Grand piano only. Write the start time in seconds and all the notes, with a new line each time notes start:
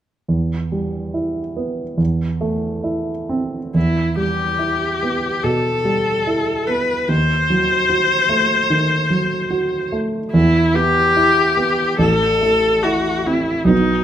0.28 E2
0.72 G3
1.14 E4
1.57 B3
1.97 E2
2.41 A3
2.84 E4
3.29 C4
3.74 E2
4.17 G3
4.59 E4
5.03 B3
5.44 B2
5.85 G3
6.27 E4
6.68 B3
7.09 D#2
7.50 F#3
7.90 F#4
8.29 A3
8.70 D#3
9.10 F#3
9.51 F#4
9.92 A3
10.34 E2
10.74 B3
11.16 E4
11.57 B3
11.99 A1
12.42 A3
12.84 E4
13.27 C4
13.65 B1 F#3 B3 D#4